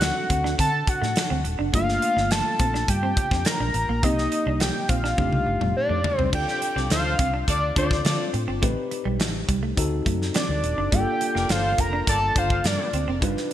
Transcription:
Already playing: fingered electric bass D2, tine electric piano C4 D4 F#4 A4, analog synth lead F#5
0.01 muted clean electric guitar stroke, snare, closed hi-hat
0.30 fingered electric bass D2, clean electric guitar C4, kick, closed hi-hat
0.44 clean electric guitar D4, snare
0.59 fingered electric bass D3, clean electric guitar C4, analog synth lead A5, kick, closed hi-hat
0.87 analog synth lead F#5, muted clean electric guitar stroke, kick, closed hi-hat
1.02 fingered electric bass A2, clean electric guitar A3, snare
1.16 snare, closed hi-hat
1.30 fingered electric bass D2, clean electric guitar C4
1.44 fingered electric bass D#1, muted clean electric guitar stroke, closed hi-hat
1.59 fingered electric bass F#1, clean electric guitar D4
1.72 fingered electric bass G1, clean electric guitar G3, tine electric piano A3 A#3 D4 F4, analog synth lead F5, kick, closed hi-hat
1.89 snare
2.02 muted clean electric guitar stroke, closed hi-hat
2.16 fingered electric bass G1, clean electric guitar D4, snare
2.31 analog synth lead A5, muted clean electric guitar stroke, snare, closed hi-hat
2.59 fingered electric bass A#1, clean electric guitar C4, kick, closed hi-hat
2.74 clean electric guitar D4, snare
2.88 fingered electric bass G2, analog synth lead G5, kick, closed hi-hat
3.03 clean electric guitar C4
3.17 muted clean electric guitar stroke, kick, closed hi-hat
3.31 fingered electric bass F2, clean electric guitar C4, kick, snare
3.45 analog synth lead A#5, snare, closed hi-hat
3.60 fingered electric bass A#1, clean electric guitar D4
3.74 fingered electric bass A1, muted clean electric guitar stroke, closed hi-hat
3.89 fingered electric bass A#1, clean electric guitar A#3
4.02 fingered electric bass C2, tine electric piano A#3 C4 D#4 G4, clean electric guitar C4, analog synth lead D#5, kick, closed hi-hat
4.18 snare
4.32 muted clean electric guitar stroke, closed hi-hat
4.46 fingered electric bass C2, clean electric guitar D4
4.60 analog synth lead G5, muted clean electric guitar stroke, snare, closed hi-hat
4.89 fingered electric bass A#1, clean electric guitar C4, analog synth lead F5, kick, closed hi-hat
5.04 clean electric guitar D4, snare
5.17 fingered electric bass F1, tine electric piano A3 D4 D#4 G4, clean electric guitar C4, kick, high tom
5.32 fingered electric bass C2, high tom
5.47 fingered electric bass G1, muted clean electric guitar stroke
5.61 fingered electric bass F1, clean electric guitar G3, mid tom
5.77 analog synth lead D5
5.89 fingered electric bass F2, clean electric guitar A3
6.04 muted clean electric guitar stroke, floor tom
6.18 fingered electric bass C2, clean electric guitar C4, analog synth lead C5, floor tom
6.32 fingered electric bass D2, tine electric piano C4 D4 F4 A4, clean electric guitar D4, analog synth lead G5, kick, crash
6.48 snare
6.62 muted clean electric guitar stroke, closed hi-hat
6.76 fingered electric bass C2, clean electric guitar C4, horn section F4 A4 D5, snare
6.90 fingered electric bass D2, horn section F4 A4 C5, analog synth lead F5, muted clean electric guitar stroke, snare, closed hi-hat
7.19 fingered electric bass C2, clean electric guitar C4, kick, closed hi-hat
7.34 clean electric guitar D4
7.47 fingered electric bass D2, horn section F4 A4 D5, analog synth lead D5, kick, closed hi-hat
7.76 fingered electric bass D2, tine electric piano C4 D4 F4 A4, clean electric guitar D4, horn section F4 A4 C5, analog synth lead D5, kick, closed hi-hat
7.91 kick, snare
8.05 fingered electric bass D3, horn section F4 A4 D5, muted clean electric guitar stroke, snare, closed hi-hat
8.34 fingered electric bass A2, clean electric guitar C4, closed hi-hat
8.48 fingered electric bass G1, clean electric guitar C4
8.61 fingered electric bass A1, clean electric guitar A3, tine electric piano C4 D#4 G4 B4, kick, closed hi-hat
8.91 muted clean electric guitar stroke, closed hi-hat
9.05 fingered electric bass B1, clean electric guitar G3
9.20 fingered electric bass A1, muted clean electric guitar stroke, snare, closed hi-hat
9.49 fingered electric bass C2, clean electric guitar G3, kick, closed hi-hat
9.63 clean electric guitar A3
9.77 fingered electric bass D2, tine electric piano C4 D#4 F#4 A4, kick, closed hi-hat
10.06 fingered electric bass F#2, clean electric guitar A3, kick, closed hi-hat
10.22 snare
10.34 clean electric guitar C4, analog synth lead D5, snare, closed hi-hat
10.49 fingered electric bass D2
10.63 fingered electric bass D#1, muted clean electric guitar stroke, closed hi-hat
10.78 fingered electric bass F#1, clean electric guitar D4
10.91 fingered electric bass G1, clean electric guitar G3, tine electric piano A#3 D4 F4 G#4, analog synth lead G5, kick, closed hi-hat
11.00 tine electric piano A4
11.21 muted clean electric guitar stroke, closed hi-hat
11.35 fingered electric bass F1, clean electric guitar A#3, horn section D4 A#4 D5, snare
11.49 fingered electric bass G1, horn section F4 A4 C5, analog synth lead F5, muted clean electric guitar stroke, snare, closed hi-hat
11.78 fingered electric bass F1, clean electric guitar A#3, analog synth lead A#5, kick, closed hi-hat
11.93 clean electric guitar D4
12.07 fingered electric bass G1, horn section D4 A#4 D5, analog synth lead A5, kick, closed hi-hat
12.36 fingered electric bass G1, clean electric guitar D4, horn section F4 A4 C5, analog synth lead F5, kick, closed hi-hat
12.50 kick
12.64 fingered electric bass G2, horn section D4 A#4 D5, analog synth lead D5, muted clean electric guitar stroke, snare, closed hi-hat
12.93 fingered electric bass D2, clean electric guitar C4, closed hi-hat
13.07 fingered electric bass F1, clean electric guitar C4
13.21 fingered electric bass G1, clean electric guitar G3, tine electric piano D4 D#4 F4 B4, kick, closed hi-hat
13.37 snare

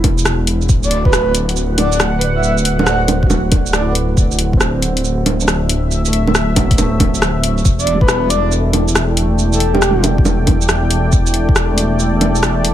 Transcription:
Already playing: detuned saw bass E1, felt piano B3 E4 F#4
0.04 kick, open hi-hat, low bongo
0.18 shaker
0.25 cross-stick, shaker
0.47 open hi-hat
0.62 shaker
0.69 detuned saw bass D1, kick, shaker
0.83 soft synth lead D5, shaker
0.91 open hi-hat
1.05 felt piano F#4, soft synth lead B4, kick
1.12 analog synth pad F#5, cross-stick, shaker
1.35 open hi-hat, shaker
1.49 open hi-hat
1.56 shaker
1.78 soft synth lead D5, open hi-hat, low bongo
1.92 shaker
2.00 cross-stick, shaker
2.19 felt piano B4, open hi-hat
2.24 felt piano D5
2.35 soft synth lead E5
2.43 soft synth lead E5, shaker
2.58 shaker
2.65 open hi-hat
2.79 felt piano A4, soft synth lead F#5, low bongo
2.84 felt piano C5, cross-stick, shaker
2.89 felt piano D5
3.08 open hi-hat, low bongo, shaker
3.23 felt piano F#4, kick
3.30 low bongo, shaker
3.52 kick, open hi-hat, low bongo
3.66 shaker
3.73 soft synth lead D5, cross-stick, shaker
3.81 felt piano E4
3.86 felt piano A4, soft synth lead D5
3.91 felt piano B4
3.95 open hi-hat
4.17 kick, shaker
4.31 shaker
4.39 open hi-hat
4.53 felt piano C4, kick
4.61 cross-stick, shaker
4.82 open hi-hat, shaker
4.97 open hi-hat
5.04 shaker
5.10 analog synth pad E5
5.26 open hi-hat, low bongo
5.40 felt piano D4, shaker
5.48 cross-stick, shaker
5.69 open hi-hat
5.91 shaker
6.05 felt piano A3, shaker
6.13 open hi-hat
6.27 low bongo
6.35 cross-stick, shaker
6.56 felt piano F#3, kick, open hi-hat, low bongo, shaker
6.62 felt piano A3
6.67 felt piano B3, kick, open hi-hat
6.78 felt piano A3, open hi-hat, low bongo, shaker
6.86 felt piano C4
7.00 kick, open hi-hat, low bongo
7.14 shaker
7.22 cross-stick, shaker
7.44 open hi-hat
7.58 shaker
7.65 detuned saw bass E1, analog synth pad E4, kick, shaker
7.78 soft synth lead D5, shaker
7.87 analog synth pad A4, open hi-hat
7.94 felt piano G3
8.01 soft synth lead B4, kick
8.08 cross-stick, shaker
8.30 soft synth lead D5, open hi-hat, shaker
8.44 analog synth pad G5
8.52 shaker
8.63 analog synth pad D5
8.73 open hi-hat, low bongo
8.88 shaker
8.95 cross-stick, shaker
9.17 open hi-hat
9.22 felt piano A3
9.39 shaker
9.53 soft synth lead A4, shaker
9.60 open hi-hat
9.74 soft synth lead G4, low bongo
9.82 cross-stick, shaker
9.91 felt piano G3
9.96 felt piano B3
10.04 open hi-hat, low bongo, shaker
10.18 kick
10.25 low bongo, shaker
10.47 kick, open hi-hat, low bongo
10.61 shaker
10.69 cross-stick, shaker
10.91 open hi-hat
11.12 kick, shaker
11.27 shaker
11.34 open hi-hat
11.49 kick
11.56 cross-stick, shaker
11.71 felt piano A3
11.76 felt piano D4, open hi-hat, shaker
11.99 shaker
12.21 open hi-hat, low bongo
12.35 shaker
12.43 cross-stick, shaker
12.65 open hi-hat

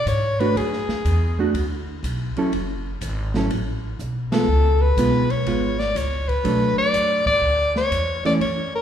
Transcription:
0.06 upright bass G#2, soprano saxophone C#5, kick, hi-hat pedal, ride
0.40 hollow-body jazz guitar A3 D4 F#4, soprano saxophone B4, ride
0.55 upright bass F#2, soprano saxophone G#4, kick, ride
0.73 snare
0.88 muted upright bass stroke, snare
1.05 upright bass E2, kick, hi-hat pedal, ride
1.39 hollow-body jazz guitar A3 D4 F#4
1.54 upright bass D2, kick, ride
2.03 upright bass B1, kick, hi-hat pedal, ride
2.36 hollow-body jazz guitar F#3 C#4 E4 A4, muted upright bass stroke, ride
2.52 upright bass F#1, kick, ride
3.01 upright bass G#1, kick, hi-hat pedal, ride
3.34 hollow-body jazz guitar F#3 C#4 E4 A4, snare
3.50 upright bass A1, kick, ride
3.99 upright bass B1, hi-hat pedal
4.32 hollow-body jazz guitar G#3 B3 F4, soprano saxophone A4, snare, ride
4.48 upright bass C#2
4.81 soprano saxophone B4
4.97 upright bass B1, hollow-body jazz guitar G#3 B3 F4, kick, hi-hat pedal, ride
5.30 soprano saxophone C#5, ride
5.46 upright bass G#1, hollow-body jazz guitar G#3 B3 F4, kick, ride
5.79 soprano saxophone D5, snare
5.95 upright bass C#2, soprano saxophone C#5, kick, hi-hat pedal, ride
6.28 soprano saxophone B4, kick, ride
6.44 upright bass B1, hollow-body jazz guitar F#3 A3 D4, kick, ride
6.76 soprano saxophone D5, muted upright bass stroke
6.93 upright bass F#2, kick, hi-hat pedal, ride
7.26 soprano saxophone D5, kick, crash
7.42 upright bass D2
7.76 soprano saxophone C#5, snare
7.91 upright bass E2, kick, hi-hat pedal, ride
8.25 hollow-body jazz guitar E3 A3 C#4, soprano saxophone D5, muted upright bass stroke, snare, ride
8.40 upright bass F#2, soprano saxophone C#5, kick, ride
8.75 soprano saxophone A#4

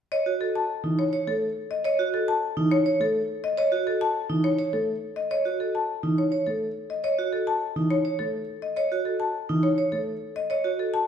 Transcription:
0.12 vibraphone C#5, marimba D#5
0.26 vibraphone F#4
0.41 marimba A4
0.55 marimba A5
0.83 grand piano E3, vibraphone D#4
0.99 marimba C#5
1.13 vibraphone C#5
1.27 grand piano A3, marimba A4
1.71 marimba D#5
1.84 vibraphone C#5, marimba D#5
1.99 vibraphone F#4
2.14 marimba A4
2.28 marimba A5
2.57 grand piano E3, vibraphone D#4
2.71 marimba C#5
2.86 vibraphone C#5
3.00 grand piano A3, marimba A4
3.44 marimba D#5
3.57 vibraphone C#5, marimba D#5
3.72 vibraphone F#4
3.87 marimba A4
4.01 marimba A5
4.29 grand piano E3, vibraphone D#4
4.44 marimba C#5
4.59 vibraphone C#5
4.73 grand piano A3, marimba A4
5.16 marimba D#5
5.31 vibraphone C#5, marimba D#5
5.45 vibraphone F#4
5.60 marimba A4
5.75 marimba A5
6.03 grand piano E3, vibraphone D#4
6.18 marimba C#5
6.32 vibraphone C#5
6.47 grand piano A3, marimba A4
6.90 marimba D#5
7.04 vibraphone C#5, marimba D#5
7.19 vibraphone F#4
7.33 marimba A4
7.47 marimba A5
7.76 grand piano E3, vibraphone D#4
7.91 marimba C#5
8.05 vibraphone C#5
8.19 grand piano A3, marimba A4
8.62 marimba D#5
8.76 vibraphone C#5, marimba D#5
8.92 vibraphone F#4
9.05 marimba A4
9.20 marimba A5
9.49 grand piano E3, vibraphone D#4
9.63 marimba C#5
9.78 vibraphone C#5
9.92 grand piano A3, marimba A4
10.36 marimba D#5
10.50 vibraphone C#5, marimba D#5
10.64 vibraphone F#4
10.79 marimba A4
10.94 marimba A5

